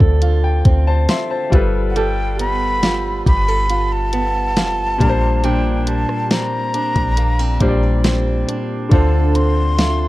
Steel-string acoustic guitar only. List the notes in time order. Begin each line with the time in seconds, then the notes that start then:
Already playing: D3 C4 F4 A4
0.22 F4
0.65 C4
1.09 F4
1.52 G3
1.96 G3 A4
2.39 B3
2.83 F4
3.26 G4
3.48 A4
3.70 F4
4.13 B3
4.57 F4
5.00 A#2
5.44 A#2 D4
5.87 G3
6.30 C4
6.74 D4
7.17 A#3
7.39 C4
7.61 G3
8.05 C4
8.48 D4
8.91 D3 A4
9.35 C4
9.78 F4